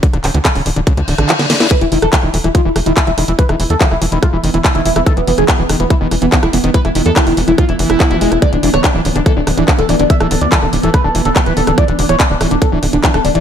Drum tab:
HH |xxoxxooxxxoxxxox|xxoxx-oxx-oxxxox|xxoxx-oxx-oxxxox|xxoxx-oxx-oxxxox|
CP |--x-x-------x---|----x-------x---|----x-------x---|----x-------x---|
SD |-r--r---r--r-ooo|r--r---r--r---r-|-r---r--r---r--r|---r--r---r--r--|
BD |o---o---o-------|o---o---o---o---|o---o---o---o---|o---o---o---o---|

HH |xxoxxooxxxoxxxox|xxoxx-oxx-oxxxox|xxoxx-oxx-oxxxox|xxoxx-oxx-oxxxox|
CP |----x-------x---|----x-------x---|----x-------x---|----x-------x---|
SD |-r--r---r--r---r|r--r---r--r---r-|-r---r--r---r--r|---r--r---r--r--|
BD |o---o---o---o---|o---o---o---o---|o---o---o---o---|o---o---o---o---|